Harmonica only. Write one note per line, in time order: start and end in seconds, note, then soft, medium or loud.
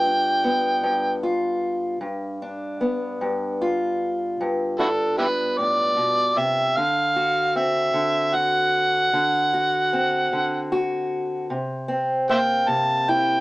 0.00 1.19 G5 medium
4.80 4.88 E4 medium
4.80 4.87 F#4 medium
4.80 5.17 A4 medium
5.18 5.26 E4 medium
5.18 5.26 G4 medium
5.18 5.59 B4 medium
5.58 6.39 D5 medium
6.38 6.78 E5 medium
6.76 7.52 F5 medium
7.56 8.36 E5 medium
8.35 10.67 F#5 medium
12.30 12.39 C5 medium
12.30 12.37 E5 medium
12.30 12.70 G5 medium
12.69 13.12 A5 medium
13.10 13.40 G5 medium